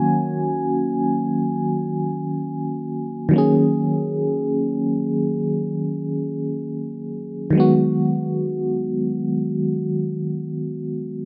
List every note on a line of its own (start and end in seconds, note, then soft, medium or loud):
0.00 3.27 D#3 medium
0.00 3.28 F#3 medium
0.00 3.29 A#3 medium
0.00 3.30 C#4 medium
0.00 3.32 F#4 medium
0.00 7.57 G#5 medium
3.29 7.02 D#3 medium
3.29 7.03 F#3 medium
3.33 7.04 A#3 medium
3.33 7.05 C#4 medium
3.38 7.07 G#4 medium
7.50 11.24 D#3 medium
7.50 11.25 F#3 medium
7.55 11.25 G#3 medium
7.55 11.25 B3 medium
7.60 11.25 F#4 medium